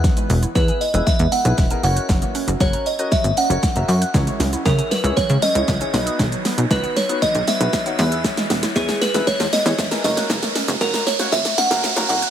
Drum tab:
HH |-xox-xox-xox-xox|-xox-xox-xox-xox|-xox-xox-xox-xox|-xox-xox-xox-xox|
SH |xxxxxxxxxxxxxxxx|xxxxxxxxxxxxxxxx|xxxxxxxxxxxxxxxx|xxxxxxxxxxxxxxxx|
SD |o---o---o---o---|o---o---o---o---|o-o-o-o-o-o-o-o-|o-o-o-o-o-o-o-o-|
BD |o---o---o---o---|o---o---o---o---|o---o---o---o---|o---o---o---o---|

HH |-xox-xox-xox-xox|-xox-xox-xox-xox|
SH |xxxxxxxxxxxxxxxx|xxxxxxxxxxxxxxxx|
SD |oooooooooooooooo|oooooooooooooo--|
BD |o---o---o---o---|o---o---o-------|